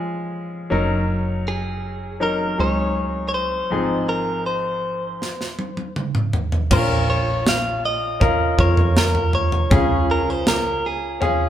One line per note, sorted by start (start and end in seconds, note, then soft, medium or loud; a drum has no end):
0.00 0.73 F3 medium
0.00 0.73 G#3 medium
0.00 0.71 C#4 medium
0.00 0.73 G#4 medium
0.70 2.55 F#1 medium
0.70 2.13 F#3 medium
0.70 2.13 C#4 medium
0.70 2.14 D#4 medium
0.70 2.14 A#4 medium
1.48 2.18 G#4 medium
2.20 2.56 F#3 medium
2.20 2.56 C#4 medium
2.20 2.57 D#4 medium
2.20 2.57 A#4 medium
2.20 2.60 A#4 medium
2.58 3.71 C#2 medium
2.58 3.65 F#3 medium
2.58 3.66 C#4 soft
2.58 3.66 D#4 medium
2.58 3.66 G#4 medium
2.58 3.27 C#5 medium
3.29 3.34 C#5 medium
3.34 4.09 C5 medium
3.70 5.17 G#1 medium
3.70 4.80 G#2 medium
3.70 5.13 F3 medium
3.70 5.14 C4 soft
3.70 5.14 D#4 medium
3.70 5.14 G#4 medium
4.09 4.46 A#4 medium
4.46 5.92 C5 medium
5.22 snare soft
5.41 snare soft
5.59 high tom medium
5.77 high tom soft
5.96 mid tom medium
6.15 mid tom medium
6.33 floor tom medium
6.52 floor tom medium
6.71 8.55 A#1 loud
6.71 7.80 A#2 medium
6.71 8.14 C#4 medium
6.71 8.14 F4 medium
6.71 8.14 A#4 medium
6.71 7.09 C#5 medium
6.71 kick loud
6.71 floor tom loud
6.71 crash loud
7.10 7.48 C#5 loud
7.47 7.85 F5 loud
7.47 snare loud
7.85 8.60 D#5 loud
8.20 8.56 C#4 medium
8.20 8.57 F4 medium
8.20 8.57 A#4 medium
8.20 kick medium
8.20 floor tom medium
8.58 9.67 F2 medium
8.58 9.65 C#4 medium
8.58 9.66 F4 medium
8.58 9.66 A#4 medium
8.58 8.97 C#5 medium
8.58 kick medium
8.77 floor tom medium
8.97 9.34 A#4 medium
8.97 snare loud
9.15 floor tom medium
9.33 10.05 C#5 medium
9.33 floor tom medium
9.52 floor tom medium
9.70 11.49 C#2 loud
9.70 10.80 C#3 medium
9.70 11.13 C#4 medium
9.70 11.14 F4 medium
9.70 11.14 G#4 medium
9.70 kick loud
9.70 floor tom loud
10.11 10.30 A#4 medium
10.30 10.48 C5 medium
10.47 10.86 A#4 medium
10.47 snare loud
10.86 11.49 G#4 medium
11.21 11.49 C#4 medium
11.21 11.49 F4 medium
11.21 11.49 G#4 medium
11.21 floor tom medium